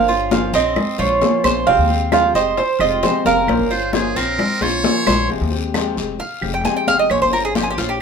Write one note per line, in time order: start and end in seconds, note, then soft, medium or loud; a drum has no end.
0.00 0.51 G1 loud
0.00 0.30 F5 loud
0.08 0.31 C#4 soft
0.08 0.53 F4 medium
0.08 0.31 F4 soft
0.08 0.31 C5 medium
0.08 high bongo soft
0.08 high conga soft
0.31 0.53 F3 medium
0.31 0.53 A#3 medium
0.31 0.53 C#4 medium
0.31 0.54 F4 medium
0.31 0.52 C5 medium
0.31 0.55 F5 medium
0.31 high bongo medium
0.31 high conga loud
0.31 short guiro medium
0.53 0.75 A#1 medium
0.53 0.98 C4 medium
0.53 0.76 C#4 soft
0.53 0.76 F4 soft
0.53 0.76 C5 medium
0.53 0.97 D#5 medium
0.53 short guiro medium
0.76 muted nylon-string guitar stroke medium
0.76 high bongo medium
0.76 high conga soft
0.76 low conga medium
0.76 long guiro medium
0.76 claves medium
0.98 1.21 A#1 loud
0.98 1.21 C#4 soft
0.98 1.43 F4 medium
0.98 1.21 F4 soft
0.98 1.21 C5 medium
0.98 1.69 C#5 medium
0.98 high bongo soft
0.98 high conga soft
0.98 low conga medium
1.21 1.66 F3 medium
1.21 1.66 A#3 medium
1.21 1.66 C#4 medium
1.21 1.67 F4 medium
1.21 high bongo medium
1.21 low bongo medium
1.21 high conga medium
1.21 short guiro medium
1.44 1.66 A#1 medium
1.44 1.66 C5 medium
1.44 high bongo soft
1.44 high conga medium
1.44 short guiro medium
1.44 claves medium
1.66 1.77 F1 medium
1.66 1.89 C3 medium
1.66 1.89 F3 medium
1.66 1.89 G#3 medium
1.66 2.11 C4 medium
1.66 1.89 C4 medium
1.66 1.88 G4 medium
1.66 2.12 F5 loud
1.66 high bongo medium
1.66 high conga soft
1.66 long guiro medium
1.78 2.32 D#2 medium
1.89 2.11 G#3 soft
1.89 2.12 C4 soft
1.89 2.11 G4 soft
1.89 high bongo soft
1.89 high conga soft
2.11 2.34 C3 medium
2.11 2.34 F3 medium
2.11 2.34 G#3 medium
2.11 2.34 C4 medium
2.11 2.34 F4 medium
2.11 2.34 G4 medium
2.11 2.35 F5 medium
2.11 high bongo medium
2.11 high conga loud
2.11 short guiro medium
2.11 claves medium
2.34 2.56 F1 medium
2.34 2.56 G#3 soft
2.34 2.57 C4 soft
2.34 2.57 G4 medium
2.34 2.79 C5 medium
2.34 2.58 D#5 medium
2.34 short guiro medium
2.57 2.81 C5 medium
2.57 muted nylon-string guitar stroke medium
2.57 high bongo medium
2.57 high conga soft
2.57 long guiro medium
2.79 3.01 F1 loud
2.79 3.02 G#3 soft
2.79 3.02 C4 medium
2.79 3.02 F4 medium
2.79 3.02 G4 medium
2.79 3.26 D#5 medium
2.79 high bongo soft
2.79 high conga soft
2.79 claves medium
3.02 3.47 C3 medium
3.02 3.46 F3 medium
3.02 3.48 G#3 medium
3.02 3.48 C4 medium
3.02 3.48 G4 medium
3.02 3.25 C5 medium
3.02 high bongo medium
3.02 low bongo medium
3.02 high conga medium
3.02 short guiro medium
3.25 3.47 F1 medium
3.25 3.70 A#4 medium
3.25 4.80 F5 medium
3.25 high bongo soft
3.25 high conga medium
3.25 short guiro medium
3.47 3.58 A#1 medium
3.47 3.69 F3 medium
3.47 3.70 A#3 medium
3.47 3.70 C#4 medium
3.47 3.70 F4 medium
3.47 3.69 C5 medium
3.47 high bongo medium
3.47 high conga soft
3.47 long guiro medium
3.47 claves medium
3.59 4.13 G1 medium
3.70 3.92 C#4 soft
3.70 4.15 F4 medium
3.70 3.93 F4 soft
3.70 3.95 C5 medium
3.70 3.92 C5 medium
3.70 high bongo soft
3.70 high conga soft
3.93 4.15 F3 medium
3.93 4.15 A#3 medium
3.93 4.15 C#4 medium
3.93 4.15 F4 medium
3.93 4.18 G#4 medium
3.93 4.14 C5 medium
3.93 high bongo medium
3.93 high conga loud
3.93 short guiro medium
4.15 4.37 A#1 medium
4.15 4.60 C4 medium
4.15 4.38 C#4 soft
4.15 4.38 F4 soft
4.15 4.64 A#4 medium
4.15 4.37 C5 medium
4.15 short guiro medium
4.39 muted nylon-string guitar stroke medium
4.39 high bongo medium
4.39 high conga soft
4.39 low conga medium
4.39 long guiro medium
4.39 claves medium
4.61 4.83 A#1 medium
4.61 4.83 C#4 soft
4.61 5.06 F4 medium
4.61 4.83 F4 soft
4.61 4.83 C5 soft
4.61 5.30 C#5 loud
4.61 high bongo soft
4.61 high conga loud
4.83 5.28 F3 medium
4.83 5.28 A#3 medium
4.83 5.28 C#4 medium
4.83 5.29 F4 medium
4.83 high bongo medium
4.83 low bongo medium
4.83 high conga medium
4.83 short guiro medium
5.07 5.28 A#1 medium
5.07 5.29 C5 medium
5.07 high bongo medium
5.07 low conga loud
5.07 short guiro medium
5.07 claves medium
5.29 5.40 F1 medium
5.29 5.51 C3 medium
5.29 5.51 F3 medium
5.29 5.51 G#3 medium
5.29 5.51 C4 medium
5.29 5.50 G4 medium
5.29 high conga soft
5.29 long guiro medium
5.41 5.94 D#2 loud
5.51 5.74 G#3 soft
5.51 5.74 C4 soft
5.51 5.73 G4 soft
5.51 high conga soft
5.74 5.96 C3 medium
5.74 5.96 F3 medium
5.74 5.96 G#3 medium
5.74 5.96 C4 medium
5.74 5.95 G4 medium
5.74 high conga loud
5.74 short guiro medium
5.74 claves medium
5.96 6.19 F1 medium
5.96 6.18 G#3 soft
5.96 6.18 C4 soft
5.96 6.18 G4 medium
5.96 short guiro medium
6.19 6.51 F5 medium
6.19 muted nylon-string guitar stroke medium
6.19 high conga soft
6.19 long guiro medium
6.41 6.64 F1 loud
6.41 6.63 G#3 soft
6.41 6.64 C4 soft
6.41 6.63 G4 soft
6.41 high conga soft
6.41 claves medium
6.54 6.64 G5 medium
6.63 7.08 C3 medium
6.63 7.08 F3 medium
6.63 7.09 G#3 medium
6.63 7.09 C4 medium
6.63 7.09 G4 medium
6.63 6.76 G#5 loud
6.63 high conga medium
6.63 short guiro medium
6.77 6.87 G5 medium
6.87 7.09 F1 medium
6.87 6.99 F5 loud
6.87 high conga medium
6.87 short guiro medium
6.99 7.10 D#5 medium
7.09 7.21 A#1 medium
7.09 7.31 F3 medium
7.09 7.32 A#3 medium
7.09 7.32 C#4 medium
7.09 7.31 F4 medium
7.09 7.30 C5 medium
7.09 7.21 C#5 medium
7.09 high conga soft
7.09 long guiro medium
7.09 claves medium
7.22 7.75 G1 medium
7.22 7.33 C5 medium
7.31 7.54 C#4 soft
7.31 7.54 F4 soft
7.31 7.44 A#4 medium
7.31 7.54 C5 soft
7.31 high conga soft
7.45 7.55 G#4 medium
7.54 7.77 F3 medium
7.54 7.77 A#3 medium
7.54 7.77 C#4 medium
7.54 7.77 F4 medium
7.54 7.63 G4 medium
7.54 7.75 C5 medium
7.54 high conga loud
7.54 short guiro medium
7.63 7.70 G#4 medium
7.71 7.78 G4 medium
7.77 7.99 A#1 medium
7.77 7.99 C#4 soft
7.77 8.00 F4 medium
7.77 7.89 F4 medium
7.77 7.99 C5 medium
7.77 short guiro medium
7.89 8.00 G4 medium